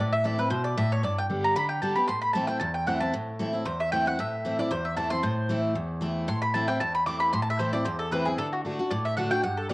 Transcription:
Already playing: steel-string acoustic guitar A2
0.00 mandolin D5
0.13 mandolin E5
0.24 steel-string acoustic guitar E3 A3 C4 E4, mandolin D5
0.38 steel-string acoustic guitar C4 E4, mandolin B4
0.50 steel-string acoustic guitar B2, mandolin C5
0.64 mandolin D5
0.77 steel-string acoustic guitar A2, mandolin E5
0.92 mandolin C#5
1.03 steel-string acoustic guitar G2, mandolin D5
1.18 mandolin G5
1.29 steel-string acoustic guitar D3 G3 B3 G4
1.44 mandolin A#5
1.56 steel-string acoustic guitar D3, mandolin B5
1.69 mandolin G5
1.82 steel-string acoustic guitar D3 G3 B3 G4, mandolin A5
1.95 steel-string acoustic guitar B3 G4, mandolin B5
2.07 steel-string acoustic guitar A2, mandolin C6
2.21 mandolin B5
2.33 steel-string acoustic guitar E3 A3 C4 E4, mandolin A5
2.47 steel-string acoustic guitar C4 E4, mandolin G5
2.59 steel-string acoustic guitar E2, mandolin A5
2.74 mandolin G5
2.86 steel-string acoustic guitar E3 A3 C4 E4, mandolin F#5
3.00 steel-string acoustic guitar C4 E4, mandolin A5
3.14 steel-string acoustic guitar A2
3.39 steel-string acoustic guitar E3 A3 C4 E4
3.53 steel-string acoustic guitar C4 E4
3.66 steel-string acoustic guitar E2, mandolin C5
3.80 mandolin E5
3.92 steel-string acoustic guitar E3 A3 C4 E4, mandolin G5
4.06 steel-string acoustic guitar C4 E4, mandolin F#5
4.19 steel-string acoustic guitar A2, mandolin E5
4.45 steel-string acoustic guitar E3 A3 C4 E4
4.59 steel-string acoustic guitar C4 E4, mandolin D5
4.71 steel-string acoustic guitar E2, mandolin C5
4.85 mandolin E5
4.97 steel-string acoustic guitar E3 A3 C4 E4, mandolin A5
5.10 steel-string acoustic guitar C4 E4, mandolin C6
5.23 steel-string acoustic guitar A2, mandolin C5
5.49 steel-string acoustic guitar E3 A3 C4 E4
5.75 steel-string acoustic guitar E2
6.01 steel-string acoustic guitar E3 A3 C4 E4
6.28 steel-string acoustic guitar A2, mandolin C6
6.42 mandolin B5
6.54 steel-string acoustic guitar E3 A3 C4 E4, mandolin A5
6.68 steel-string acoustic guitar C4 E4, mandolin G5
6.80 steel-string acoustic guitar E2, mandolin A5
6.95 mandolin B5
7.06 steel-string acoustic guitar E3 A3 C4 E4, mandolin D6
7.20 mandolin B5
7.33 steel-string acoustic guitar A2, mandolin C6
7.42 mandolin A5
7.50 mandolin E5
7.59 steel-string acoustic guitar E3 A3 C4 E4, mandolin C5
7.73 steel-string acoustic guitar C4 E4, mandolin D5
7.85 steel-string acoustic guitar E2, mandolin C5
7.99 mandolin A4
8.11 steel-string acoustic guitar E3 A3 C4 E4, mandolin B4
8.26 steel-string acoustic guitar C4 E4, mandolin G#4
8.38 steel-string acoustic guitar D3, mandolin A4
8.53 mandolin F#4
8.65 steel-string acoustic guitar D3 A3 D4 F#4
8.79 steel-string acoustic guitar D4 F#4
8.91 steel-string acoustic guitar A2, mandolin D5
9.05 mandolin E5
9.17 steel-string acoustic guitar D3 A3 D4 F#4, mandolin F#5
9.31 steel-string acoustic guitar D4 F#4, mandolin G5
9.43 steel-string acoustic guitar G2, mandolin F#5
9.57 mandolin A4
9.69 steel-string acoustic guitar D3 G3 B3, mandolin D5

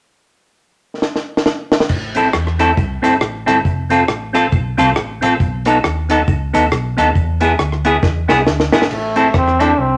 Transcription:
1.02 snare
1.16 snare
1.37 snare
1.46 snare
1.72 snare
1.80 snare
1.89 fingered electric bass A1, kick, crash, cabasa
2.15 tonewheel organ C4 E4 A4, clean electric guitar C4 E4 A4, closed hi-hat, cabasa
2.33 fingered electric bass E2, muted clean electric guitar stroke, cross-stick, cabasa
2.47 cross-stick
2.59 tonewheel organ C4 E4 A4, clean electric guitar C4 E4 A4, closed hi-hat, cabasa
2.77 fingered electric bass C2, tonewheel organ E4 A4, kick, cabasa
3.02 fingered electric bass G1, tonewheel organ C4 E4 A4, clean electric guitar C4 E4 A4, closed hi-hat, cabasa
3.21 fingered electric bass A1, cross-stick, cabasa
3.46 fingered electric bass G1, clean electric guitar C4 E4 A4, tonewheel organ C4 E4 A4, closed hi-hat, cabasa
3.65 fingered electric bass F1, kick, cabasa
3.90 tonewheel organ C4 F4 A4, clean electric guitar C4 F4 A4, closed hi-hat, cabasa
4.08 fingered electric bass A1, muted clean electric guitar stroke, cross-stick, cabasa
4.33 tonewheel organ C4 F4 A4, clean electric guitar C4 F4 A4, closed hi-hat, cabasa
4.52 fingered electric bass B1, tonewheel organ F4 A4, kick, cabasa
4.77 fingered electric bass C2, tonewheel organ C4 F4 A4, clean electric guitar C4 F4 A4, closed hi-hat, cabasa
4.96 fingered electric bass A1, cross-stick, cabasa
5.21 fingered electric bass A1, tonewheel organ C4 F4 A4, clean electric guitar C4 F4 A4, closed hi-hat, cabasa
5.40 fingered electric bass B1, kick, cabasa
5.65 tonewheel organ B3 D#4 A4, clean electric guitar B3 D#4 A4, cross-stick, closed hi-hat, cabasa
5.84 fingered electric bass D#2, muted clean electric guitar stroke, cross-stick, cabasa
6.09 tonewheel organ B3 D#4 A4, clean electric guitar B3 D#4 A4, closed hi-hat, cabasa
6.27 fingered electric bass C#2, tonewheel organ D#4 A4, kick, cabasa
6.53 fingered electric bass D#2, tonewheel organ B3 D#4 A4, clean electric guitar B3 D#4 A4, closed hi-hat, cabasa
6.71 fingered electric bass B1, cross-stick, cabasa
6.97 fingered electric bass D#2, tonewheel organ B3 D#4 A4, clean electric guitar B3 D#4 A4, closed hi-hat, cabasa
7.15 fingered electric bass E2, kick, cabasa
7.40 tonewheel organ B3 E4 G#4, clean electric guitar B3 E4 G#4, closed hi-hat, cabasa
7.59 fingered electric bass D2, muted clean electric guitar stroke, cross-stick, cabasa
7.72 cross-stick
7.85 tonewheel organ B3 E4 G#4, clean electric guitar B3 E4 G#4, closed hi-hat, cabasa
8.02 fingered electric bass E2, tonewheel organ E4 G#4, kick, snare, cabasa
8.28 fingered electric bass C2, tonewheel organ B3 E4 G#4, clean electric guitar B3 E4 G#4, snare, cabasa
8.47 fingered electric bass D2, snare, cabasa
8.60 snare
8.72 fingered electric bass G#1, tonewheel organ B3 E4 G#4, clean electric guitar B3 E4 G#4, snare, cabasa
8.82 snare
8.91 fingered electric bass A1, trombone A3, crash
9.16 tonewheel organ C4 E4 A4, clean electric guitar C4 E4 A4, closed hi-hat
9.34 fingered electric bass E2, trombone C4, tonewheel organ E4 A4, muted clean electric guitar stroke, kick, cross-stick
9.48 cross-stick
9.59 clean electric guitar C4 E4 A4, tonewheel organ C4 E4 A4, trombone D4, closed hi-hat
9.78 fingered electric bass C2, trombone C4

